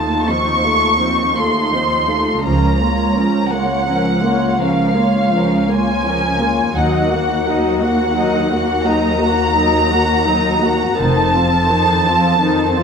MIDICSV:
0, 0, Header, 1, 6, 480
1, 0, Start_track
1, 0, Key_signature, -5, "minor"
1, 0, Tempo, 722022
1, 1634, Time_signature, 12, 3, 24, 8
1, 4030, Tempo, 700117
1, 6910, Tempo, 711744
1, 8643, End_track
2, 0, Start_track
2, 0, Title_t, "Violin section"
2, 0, Program_c, 0, 48
2, 0, Note_on_c, 0, 81, 46
2, 184, Note_on_c, 0, 85, 59
2, 191, Note_off_c, 0, 81, 0
2, 908, Note_off_c, 0, 85, 0
2, 909, Note_on_c, 0, 84, 48
2, 1631, Note_on_c, 0, 82, 52
2, 1633, Note_off_c, 0, 84, 0
2, 2326, Note_off_c, 0, 82, 0
2, 2328, Note_on_c, 0, 78, 55
2, 3050, Note_on_c, 0, 77, 49
2, 3055, Note_off_c, 0, 78, 0
2, 3791, Note_off_c, 0, 77, 0
2, 3796, Note_on_c, 0, 80, 62
2, 4511, Note_on_c, 0, 78, 52
2, 4514, Note_off_c, 0, 80, 0
2, 5223, Note_off_c, 0, 78, 0
2, 5231, Note_on_c, 0, 78, 59
2, 5935, Note_off_c, 0, 78, 0
2, 5953, Note_on_c, 0, 82, 67
2, 7399, Note_off_c, 0, 82, 0
2, 7407, Note_on_c, 0, 81, 66
2, 8643, Note_off_c, 0, 81, 0
2, 8643, End_track
3, 0, Start_track
3, 0, Title_t, "Violin section"
3, 0, Program_c, 1, 48
3, 0, Note_on_c, 1, 65, 30
3, 0, Note_on_c, 1, 69, 31
3, 186, Note_off_c, 1, 65, 0
3, 187, Note_off_c, 1, 69, 0
3, 187, Note_on_c, 1, 63, 32
3, 190, Note_on_c, 1, 72, 27
3, 424, Note_on_c, 1, 69, 31
3, 425, Note_off_c, 1, 63, 0
3, 426, Note_on_c, 1, 65, 29
3, 427, Note_off_c, 1, 72, 0
3, 658, Note_on_c, 1, 63, 27
3, 661, Note_on_c, 1, 72, 29
3, 665, Note_off_c, 1, 69, 0
3, 666, Note_off_c, 1, 65, 0
3, 889, Note_off_c, 1, 63, 0
3, 890, Note_off_c, 1, 72, 0
3, 907, Note_on_c, 1, 65, 32
3, 910, Note_on_c, 1, 69, 29
3, 1153, Note_off_c, 1, 65, 0
3, 1155, Note_off_c, 1, 69, 0
3, 1155, Note_on_c, 1, 63, 33
3, 1157, Note_on_c, 1, 72, 32
3, 1397, Note_off_c, 1, 63, 0
3, 1398, Note_off_c, 1, 72, 0
3, 1399, Note_on_c, 1, 69, 31
3, 1404, Note_on_c, 1, 65, 29
3, 1635, Note_off_c, 1, 69, 0
3, 1638, Note_off_c, 1, 65, 0
3, 1641, Note_on_c, 1, 70, 32
3, 1643, Note_on_c, 1, 61, 36
3, 1857, Note_off_c, 1, 70, 0
3, 1858, Note_off_c, 1, 61, 0
3, 1876, Note_on_c, 1, 73, 33
3, 1878, Note_on_c, 1, 65, 33
3, 2109, Note_off_c, 1, 73, 0
3, 2110, Note_off_c, 1, 65, 0
3, 2112, Note_on_c, 1, 70, 33
3, 2116, Note_on_c, 1, 61, 34
3, 2345, Note_off_c, 1, 70, 0
3, 2347, Note_off_c, 1, 61, 0
3, 2352, Note_on_c, 1, 73, 33
3, 2354, Note_on_c, 1, 65, 32
3, 2578, Note_on_c, 1, 70, 32
3, 2582, Note_on_c, 1, 61, 33
3, 2583, Note_off_c, 1, 73, 0
3, 2584, Note_off_c, 1, 65, 0
3, 2802, Note_off_c, 1, 70, 0
3, 2804, Note_off_c, 1, 61, 0
3, 2824, Note_on_c, 1, 73, 39
3, 2827, Note_on_c, 1, 65, 39
3, 3065, Note_off_c, 1, 73, 0
3, 3066, Note_off_c, 1, 65, 0
3, 3067, Note_on_c, 1, 70, 38
3, 3068, Note_on_c, 1, 61, 34
3, 3306, Note_on_c, 1, 73, 35
3, 3310, Note_off_c, 1, 61, 0
3, 3310, Note_off_c, 1, 70, 0
3, 3313, Note_on_c, 1, 65, 32
3, 3554, Note_off_c, 1, 73, 0
3, 3554, Note_on_c, 1, 70, 31
3, 3557, Note_off_c, 1, 65, 0
3, 3557, Note_on_c, 1, 61, 35
3, 3780, Note_off_c, 1, 70, 0
3, 3781, Note_off_c, 1, 61, 0
3, 3801, Note_on_c, 1, 73, 30
3, 3807, Note_on_c, 1, 65, 33
3, 4032, Note_on_c, 1, 61, 39
3, 4034, Note_off_c, 1, 73, 0
3, 4034, Note_on_c, 1, 70, 36
3, 4038, Note_off_c, 1, 65, 0
3, 4272, Note_off_c, 1, 61, 0
3, 4273, Note_off_c, 1, 70, 0
3, 4280, Note_on_c, 1, 65, 36
3, 4280, Note_on_c, 1, 73, 35
3, 4518, Note_off_c, 1, 65, 0
3, 4518, Note_off_c, 1, 73, 0
3, 4525, Note_on_c, 1, 75, 36
3, 4528, Note_on_c, 1, 70, 34
3, 4746, Note_off_c, 1, 75, 0
3, 4747, Note_off_c, 1, 70, 0
3, 4765, Note_on_c, 1, 66, 37
3, 4768, Note_on_c, 1, 78, 39
3, 5003, Note_off_c, 1, 66, 0
3, 5004, Note_off_c, 1, 78, 0
3, 5008, Note_on_c, 1, 75, 35
3, 5013, Note_on_c, 1, 70, 35
3, 5241, Note_on_c, 1, 66, 40
3, 5242, Note_off_c, 1, 75, 0
3, 5245, Note_off_c, 1, 70, 0
3, 5246, Note_on_c, 1, 78, 38
3, 5475, Note_off_c, 1, 66, 0
3, 5478, Note_off_c, 1, 78, 0
3, 5485, Note_on_c, 1, 75, 35
3, 5486, Note_on_c, 1, 70, 33
3, 5700, Note_off_c, 1, 75, 0
3, 5701, Note_off_c, 1, 70, 0
3, 5726, Note_on_c, 1, 66, 40
3, 5728, Note_on_c, 1, 78, 35
3, 5960, Note_off_c, 1, 66, 0
3, 5961, Note_off_c, 1, 78, 0
3, 5967, Note_on_c, 1, 70, 38
3, 5968, Note_on_c, 1, 75, 38
3, 6203, Note_off_c, 1, 70, 0
3, 6203, Note_off_c, 1, 75, 0
3, 6208, Note_on_c, 1, 66, 36
3, 6210, Note_on_c, 1, 78, 35
3, 6440, Note_off_c, 1, 66, 0
3, 6441, Note_off_c, 1, 78, 0
3, 6452, Note_on_c, 1, 75, 34
3, 6453, Note_on_c, 1, 70, 37
3, 6664, Note_off_c, 1, 75, 0
3, 6665, Note_off_c, 1, 70, 0
3, 6677, Note_on_c, 1, 66, 34
3, 6679, Note_on_c, 1, 78, 34
3, 6915, Note_off_c, 1, 66, 0
3, 6916, Note_off_c, 1, 78, 0
3, 6916, Note_on_c, 1, 70, 40
3, 6920, Note_on_c, 1, 75, 40
3, 7156, Note_off_c, 1, 70, 0
3, 7158, Note_off_c, 1, 75, 0
3, 7163, Note_on_c, 1, 66, 34
3, 7167, Note_on_c, 1, 78, 35
3, 7404, Note_off_c, 1, 66, 0
3, 7404, Note_on_c, 1, 69, 38
3, 7405, Note_off_c, 1, 78, 0
3, 7408, Note_on_c, 1, 72, 40
3, 7629, Note_off_c, 1, 69, 0
3, 7631, Note_off_c, 1, 72, 0
3, 7638, Note_on_c, 1, 69, 39
3, 7646, Note_on_c, 1, 65, 35
3, 7882, Note_off_c, 1, 69, 0
3, 7886, Note_off_c, 1, 65, 0
3, 7888, Note_on_c, 1, 72, 39
3, 7890, Note_on_c, 1, 69, 37
3, 8123, Note_off_c, 1, 69, 0
3, 8124, Note_off_c, 1, 72, 0
3, 8131, Note_on_c, 1, 69, 41
3, 8135, Note_on_c, 1, 65, 41
3, 8363, Note_off_c, 1, 69, 0
3, 8365, Note_off_c, 1, 65, 0
3, 8371, Note_on_c, 1, 69, 37
3, 8374, Note_on_c, 1, 72, 34
3, 8584, Note_off_c, 1, 69, 0
3, 8585, Note_off_c, 1, 72, 0
3, 8605, Note_on_c, 1, 65, 39
3, 8607, Note_on_c, 1, 69, 40
3, 8643, Note_off_c, 1, 65, 0
3, 8643, Note_off_c, 1, 69, 0
3, 8643, End_track
4, 0, Start_track
4, 0, Title_t, "Viola section"
4, 0, Program_c, 2, 48
4, 0, Note_on_c, 2, 57, 35
4, 0, Note_on_c, 2, 63, 29
4, 187, Note_off_c, 2, 57, 0
4, 187, Note_off_c, 2, 63, 0
4, 191, Note_on_c, 2, 53, 31
4, 191, Note_on_c, 2, 60, 31
4, 422, Note_on_c, 2, 63, 31
4, 425, Note_on_c, 2, 57, 33
4, 427, Note_off_c, 2, 53, 0
4, 427, Note_off_c, 2, 60, 0
4, 661, Note_on_c, 2, 53, 28
4, 662, Note_on_c, 2, 60, 30
4, 664, Note_off_c, 2, 63, 0
4, 665, Note_off_c, 2, 57, 0
4, 890, Note_off_c, 2, 53, 0
4, 891, Note_off_c, 2, 60, 0
4, 904, Note_on_c, 2, 63, 30
4, 907, Note_on_c, 2, 57, 33
4, 1146, Note_on_c, 2, 53, 33
4, 1148, Note_on_c, 2, 60, 34
4, 1152, Note_off_c, 2, 63, 0
4, 1153, Note_off_c, 2, 57, 0
4, 1390, Note_on_c, 2, 63, 30
4, 1391, Note_on_c, 2, 57, 32
4, 1392, Note_off_c, 2, 53, 0
4, 1393, Note_off_c, 2, 60, 0
4, 1625, Note_on_c, 2, 61, 38
4, 1627, Note_on_c, 2, 53, 40
4, 1631, Note_off_c, 2, 57, 0
4, 1631, Note_off_c, 2, 63, 0
4, 1848, Note_off_c, 2, 61, 0
4, 1849, Note_off_c, 2, 53, 0
4, 1866, Note_on_c, 2, 58, 31
4, 1869, Note_off_c, 2, 58, 0
4, 1869, Note_on_c, 2, 58, 31
4, 2096, Note_on_c, 2, 61, 34
4, 2098, Note_on_c, 2, 53, 33
4, 2106, Note_off_c, 2, 58, 0
4, 2334, Note_on_c, 2, 58, 32
4, 2335, Note_off_c, 2, 58, 0
4, 2335, Note_on_c, 2, 58, 36
4, 2337, Note_off_c, 2, 61, 0
4, 2338, Note_off_c, 2, 53, 0
4, 2573, Note_on_c, 2, 61, 32
4, 2574, Note_on_c, 2, 53, 32
4, 2575, Note_off_c, 2, 58, 0
4, 2799, Note_off_c, 2, 53, 0
4, 2799, Note_off_c, 2, 61, 0
4, 2811, Note_on_c, 2, 58, 37
4, 2815, Note_off_c, 2, 58, 0
4, 2815, Note_on_c, 2, 58, 37
4, 3052, Note_on_c, 2, 61, 35
4, 3055, Note_on_c, 2, 53, 33
4, 3060, Note_off_c, 2, 58, 0
4, 3299, Note_on_c, 2, 58, 35
4, 3301, Note_off_c, 2, 58, 0
4, 3301, Note_on_c, 2, 58, 33
4, 3302, Note_off_c, 2, 61, 0
4, 3304, Note_off_c, 2, 53, 0
4, 3544, Note_on_c, 2, 53, 32
4, 3546, Note_on_c, 2, 61, 30
4, 3551, Note_off_c, 2, 58, 0
4, 3774, Note_off_c, 2, 53, 0
4, 3776, Note_off_c, 2, 61, 0
4, 3786, Note_on_c, 2, 58, 31
4, 3789, Note_off_c, 2, 58, 0
4, 3789, Note_on_c, 2, 58, 35
4, 4026, Note_on_c, 2, 61, 36
4, 4027, Note_on_c, 2, 53, 38
4, 4028, Note_off_c, 2, 58, 0
4, 4262, Note_on_c, 2, 58, 34
4, 4263, Note_off_c, 2, 58, 0
4, 4263, Note_on_c, 2, 58, 34
4, 4269, Note_off_c, 2, 53, 0
4, 4269, Note_off_c, 2, 61, 0
4, 4510, Note_off_c, 2, 58, 0
4, 4510, Note_on_c, 2, 54, 45
4, 4511, Note_on_c, 2, 63, 44
4, 4738, Note_off_c, 2, 54, 0
4, 4739, Note_off_c, 2, 63, 0
4, 4756, Note_on_c, 2, 58, 37
4, 4757, Note_on_c, 2, 66, 36
4, 4998, Note_off_c, 2, 58, 0
4, 4999, Note_off_c, 2, 66, 0
4, 5003, Note_on_c, 2, 54, 38
4, 5003, Note_on_c, 2, 63, 37
4, 5234, Note_on_c, 2, 66, 37
4, 5235, Note_on_c, 2, 58, 39
4, 5240, Note_off_c, 2, 54, 0
4, 5240, Note_off_c, 2, 63, 0
4, 5472, Note_off_c, 2, 66, 0
4, 5473, Note_off_c, 2, 58, 0
4, 5473, Note_on_c, 2, 54, 34
4, 5473, Note_on_c, 2, 63, 36
4, 5694, Note_off_c, 2, 54, 0
4, 5694, Note_off_c, 2, 63, 0
4, 5713, Note_on_c, 2, 66, 38
4, 5717, Note_on_c, 2, 58, 36
4, 5952, Note_on_c, 2, 63, 39
4, 5953, Note_off_c, 2, 66, 0
4, 5955, Note_off_c, 2, 58, 0
4, 5956, Note_on_c, 2, 54, 35
4, 6193, Note_on_c, 2, 58, 42
4, 6193, Note_on_c, 2, 66, 38
4, 6195, Note_off_c, 2, 63, 0
4, 6197, Note_off_c, 2, 54, 0
4, 6432, Note_off_c, 2, 58, 0
4, 6433, Note_off_c, 2, 66, 0
4, 6435, Note_on_c, 2, 54, 37
4, 6438, Note_on_c, 2, 63, 33
4, 6655, Note_off_c, 2, 54, 0
4, 6656, Note_off_c, 2, 63, 0
4, 6675, Note_on_c, 2, 58, 36
4, 6678, Note_on_c, 2, 66, 35
4, 6913, Note_on_c, 2, 63, 40
4, 6914, Note_off_c, 2, 58, 0
4, 6916, Note_off_c, 2, 66, 0
4, 6916, Note_on_c, 2, 54, 39
4, 7151, Note_on_c, 2, 58, 37
4, 7152, Note_on_c, 2, 66, 34
4, 7155, Note_off_c, 2, 63, 0
4, 7156, Note_off_c, 2, 54, 0
4, 7394, Note_on_c, 2, 51, 44
4, 7397, Note_off_c, 2, 58, 0
4, 7397, Note_on_c, 2, 63, 46
4, 7398, Note_off_c, 2, 66, 0
4, 7624, Note_off_c, 2, 51, 0
4, 7625, Note_off_c, 2, 63, 0
4, 7645, Note_on_c, 2, 60, 38
4, 7648, Note_on_c, 2, 53, 36
4, 7885, Note_off_c, 2, 60, 0
4, 7887, Note_off_c, 2, 53, 0
4, 7889, Note_on_c, 2, 51, 38
4, 7889, Note_on_c, 2, 63, 42
4, 8124, Note_off_c, 2, 51, 0
4, 8124, Note_off_c, 2, 63, 0
4, 8125, Note_on_c, 2, 53, 41
4, 8125, Note_on_c, 2, 60, 42
4, 8356, Note_on_c, 2, 63, 38
4, 8358, Note_on_c, 2, 51, 39
4, 8360, Note_off_c, 2, 53, 0
4, 8360, Note_off_c, 2, 60, 0
4, 8576, Note_off_c, 2, 63, 0
4, 8577, Note_off_c, 2, 51, 0
4, 8599, Note_on_c, 2, 53, 41
4, 8601, Note_on_c, 2, 60, 41
4, 8643, Note_off_c, 2, 53, 0
4, 8643, Note_off_c, 2, 60, 0
4, 8643, End_track
5, 0, Start_track
5, 0, Title_t, "Cello section"
5, 0, Program_c, 3, 48
5, 0, Note_on_c, 3, 39, 35
5, 1608, Note_off_c, 3, 39, 0
5, 1630, Note_on_c, 3, 37, 36
5, 4485, Note_off_c, 3, 37, 0
5, 4510, Note_on_c, 3, 39, 45
5, 7370, Note_off_c, 3, 39, 0
5, 7404, Note_on_c, 3, 41, 45
5, 8643, Note_off_c, 3, 41, 0
5, 8643, End_track
6, 0, Start_track
6, 0, Title_t, "Double bass section"
6, 0, Program_c, 4, 48
6, 1634, Note_on_c, 4, 37, 33
6, 2080, Note_off_c, 4, 37, 0
6, 4509, Note_on_c, 4, 39, 38
6, 4969, Note_off_c, 4, 39, 0
6, 7400, Note_on_c, 4, 29, 43
6, 7858, Note_off_c, 4, 29, 0
6, 8643, End_track
0, 0, End_of_file